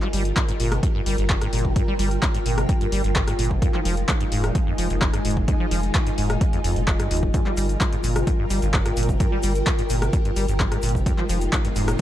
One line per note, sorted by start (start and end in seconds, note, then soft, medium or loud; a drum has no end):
0.00 3.58 G3 medium
0.00 0.08 G3 medium
0.00 3.61 F4 medium
0.00 7.30 F4 medium
0.00 3.58 A#4 medium
0.00 clap soft
0.08 4.88 A#4 medium
0.13 0.32 G1 loud
0.13 0.23 G3 medium
0.13 open hi-hat loud
0.25 closed hi-hat medium
0.36 0.40 G2 loud
0.36 3.62 G5 medium
0.36 kick loud
0.36 clap loud
0.36 closed hi-hat medium
0.48 0.52 G#2 medium
0.48 closed hi-hat medium
0.60 0.79 G1 medium
0.60 0.73 A#2 medium
0.60 open hi-hat loud
0.72 0.81 C3 medium
0.72 cross-stick medium
0.72 closed hi-hat medium
0.83 0.87 G2 loud
0.83 kick loud
0.83 closed hi-hat medium
0.95 1.01 G2 medium
1.06 1.16 G1 loud
1.06 1.16 G3 medium
1.06 open hi-hat loud
1.18 1.37 G1 loud
1.18 1.24 G1 medium
1.18 closed hi-hat medium
1.29 1.36 G2 medium
1.29 kick loud
1.29 cross-stick medium
1.29 clap loud
1.41 1.48 G#2 medium
1.41 cross-stick medium
1.41 closed hi-hat medium
1.53 1.72 G1 loud
1.53 1.66 A#2 medium
1.53 open hi-hat loud
1.59 closed hi-hat medium
1.65 1.74 C3 medium
1.65 kick medium
1.76 1.83 G2 medium
1.76 kick loud
1.76 closed hi-hat medium
1.88 1.94 G3 medium
1.99 2.18 G1 loud
1.99 2.09 G3 medium
1.99 open hi-hat loud
2.11 closed hi-hat medium
2.22 2.26 G2 loud
2.22 kick loud
2.22 clap loud
2.22 closed hi-hat medium
2.34 2.38 G#2 medium
2.34 closed hi-hat medium
2.46 2.65 G1 medium
2.46 2.59 A#2 medium
2.46 open hi-hat loud
2.58 2.67 C3 medium
2.58 cross-stick medium
2.58 closed hi-hat medium
2.69 2.73 G2 loud
2.69 kick loud
2.69 closed hi-hat medium
2.81 2.87 G2 medium
2.81 closed hi-hat soft
2.92 3.02 G1 loud
2.92 3.02 G3 medium
2.92 open hi-hat loud
3.04 3.23 G1 loud
3.04 3.10 G1 medium
3.04 closed hi-hat medium
3.16 3.22 G2 medium
3.16 kick loud
3.16 cross-stick medium
3.16 clap loud
3.28 3.34 G#2 medium
3.28 cross-stick medium
3.28 closed hi-hat medium
3.39 3.58 G1 loud
3.39 3.52 A#2 medium
3.39 open hi-hat loud
3.45 closed hi-hat medium
3.51 3.60 C3 medium
3.51 kick medium
3.62 3.69 F2 medium
3.62 7.30 G#3 medium
3.62 7.30 D#4 medium
3.62 12.01 F4 medium
3.62 kick loud
3.62 closed hi-hat medium
3.70 7.34 D#5 medium
3.70 7.34 G#5 medium
3.74 3.80 F3 medium
3.74 clap soft
3.85 4.04 F1 loud
3.85 3.95 F3 medium
3.85 open hi-hat loud
3.97 closed hi-hat soft
4.09 4.12 F2 loud
4.09 kick loud
4.09 clap loud
4.09 closed hi-hat medium
4.21 4.24 G2 medium
4.21 closed hi-hat soft
4.32 4.51 F1 medium
4.32 4.45 G#2 medium
4.32 open hi-hat loud
4.44 4.53 A#2 medium
4.44 cross-stick medium
4.44 closed hi-hat medium
4.55 4.59 F2 loud
4.55 kick loud
4.55 closed hi-hat medium
4.67 4.73 F2 medium
4.78 4.88 F1 loud
4.78 4.88 F3 medium
4.78 open hi-hat loud
4.90 5.09 F1 loud
4.90 4.96 F1 medium
4.90 closed hi-hat medium
5.01 5.08 F2 medium
5.01 kick loud
5.01 cross-stick medium
5.01 clap loud
5.13 5.20 G2 medium
5.13 cross-stick medium
5.13 closed hi-hat medium
5.25 5.44 F1 loud
5.25 5.38 G#2 medium
5.25 open hi-hat loud
5.31 closed hi-hat medium
5.37 5.46 A#2 medium
5.37 kick medium
5.48 5.55 F2 medium
5.48 kick loud
5.48 closed hi-hat medium
5.60 5.66 F3 medium
5.71 5.90 F1 loud
5.71 5.81 F3 medium
5.71 open hi-hat loud
5.83 closed hi-hat soft
5.95 5.99 F2 loud
5.95 kick loud
5.95 clap loud
5.95 closed hi-hat medium
6.06 6.10 G2 medium
6.06 closed hi-hat soft
6.18 6.37 F1 medium
6.18 6.31 G#2 medium
6.18 open hi-hat loud
6.30 6.39 A#2 medium
6.30 cross-stick medium
6.30 closed hi-hat medium
6.41 6.45 F2 loud
6.41 kick loud
6.41 closed hi-hat medium
6.53 6.59 F2 medium
6.53 closed hi-hat soft
6.64 6.74 F1 loud
6.64 6.78 F2 medium
6.64 open hi-hat loud
6.76 6.95 F1 loud
6.76 6.82 C3 loud
6.76 closed hi-hat soft
6.88 6.92 F2 loud
6.88 kick loud
6.88 cross-stick medium
6.88 clap loud
7.00 7.09 G2 medium
7.00 cross-stick medium
7.00 closed hi-hat medium
7.11 7.30 F1 medium
7.11 7.24 D#2 medium
7.11 open hi-hat loud
7.17 closed hi-hat medium
7.23 7.29 G2 loud
7.23 kick medium
7.34 7.41 G2 medium
7.34 11.02 G3 medium
7.34 9.18 F4 medium
7.34 11.02 A#4 medium
7.34 kick loud
7.34 closed hi-hat medium
7.34 shaker soft
7.45 7.52 G3 medium
7.45 11.06 G5 medium
7.45 clap soft
7.57 7.76 G1 loud
7.57 7.67 G3 medium
7.57 11.66 A#4 medium
7.57 open hi-hat loud
7.57 shaker medium
7.69 closed hi-hat soft
7.69 shaker medium
7.81 7.85 G2 loud
7.81 kick loud
7.81 clap loud
7.81 closed hi-hat medium
7.81 shaker soft
7.93 7.96 G#2 medium
7.93 closed hi-hat soft
8.04 8.23 G1 medium
8.04 8.17 A#2 medium
8.04 open hi-hat loud
8.04 shaker medium
8.16 8.25 C3 medium
8.16 cross-stick medium
8.16 closed hi-hat soft
8.16 shaker soft
8.27 8.31 G2 loud
8.27 kick loud
8.27 closed hi-hat medium
8.27 shaker soft
8.39 8.45 G2 medium
8.50 8.60 G1 loud
8.50 8.60 G3 medium
8.50 open hi-hat loud
8.50 shaker medium
8.62 8.69 G1 medium
8.62 8.81 G1 medium
8.62 closed hi-hat soft
8.62 shaker medium
8.74 8.80 G2 medium
8.74 kick loud
8.74 cross-stick medium
8.74 clap loud
8.74 shaker soft
8.86 8.92 G#2 medium
8.86 cross-stick medium
8.86 closed hi-hat medium
8.97 9.16 G1 loud
8.97 9.10 A#2 medium
8.97 open hi-hat loud
8.97 shaker medium
9.03 closed hi-hat medium
9.09 9.18 C3 medium
9.09 kick medium
9.09 shaker medium
9.20 9.27 G2 medium
9.20 11.04 G4 medium
9.20 kick loud
9.20 closed hi-hat medium
9.20 shaker soft
9.32 9.38 G3 medium
9.43 9.62 G1 loud
9.43 9.53 G3 medium
9.43 open hi-hat loud
9.43 shaker medium
9.55 closed hi-hat soft
9.55 shaker soft
9.67 9.71 G2 loud
9.67 kick loud
9.67 clap loud
9.67 closed hi-hat medium
9.67 shaker soft
9.79 9.82 G#2 medium
9.79 closed hi-hat medium
9.90 10.09 G1 medium
9.90 10.03 A#2 medium
9.90 open hi-hat loud
9.90 shaker medium
10.02 10.11 C3 medium
10.02 cross-stick medium
10.02 closed hi-hat medium
10.02 shaker soft
10.13 10.17 G2 loud
10.13 kick loud
10.13 closed hi-hat medium
10.13 shaker soft
10.25 10.31 G2 medium
10.25 closed hi-hat soft
10.36 10.46 G1 loud
10.36 10.46 G3 medium
10.36 open hi-hat loud
10.36 shaker medium
10.48 10.55 G1 medium
10.48 10.67 G1 loud
10.48 closed hi-hat medium
10.48 shaker medium
10.60 10.66 G2 medium
10.60 kick loud
10.60 cross-stick medium
10.60 clap loud
10.60 shaker soft
10.72 10.78 G#2 medium
10.72 cross-stick medium
10.72 closed hi-hat medium
10.82 11.02 G1 loud
10.82 10.96 A#2 medium
10.82 open hi-hat loud
10.82 shaker medium
10.89 closed hi-hat medium
10.95 11.04 C3 medium
10.95 kick medium
10.95 shaker medium
11.06 11.13 F2 medium
11.06 12.01 G#3 medium
11.06 12.01 D#4 medium
11.06 12.01 F4 medium
11.06 kick loud
11.06 closed hi-hat medium
11.06 riser medium
11.06 shaker soft
11.18 11.24 F3 medium
11.18 12.01 D#5 medium
11.18 clap soft
11.29 11.48 F1 loud
11.29 11.39 F3 medium
11.29 open hi-hat loud
11.29 shaker medium
11.41 closed hi-hat medium
11.41 shaker soft
11.53 11.57 F2 loud
11.53 kick loud
11.53 clap loud
11.53 closed hi-hat medium
11.53 shaker soft
11.65 11.68 G2 medium
11.65 closed hi-hat medium
11.76 11.95 F1 medium
11.76 11.89 G#2 medium
11.76 open hi-hat loud
11.76 shaker medium
11.88 11.97 A#2 medium
11.88 cross-stick medium
11.88 closed hi-hat medium
11.88 shaker soft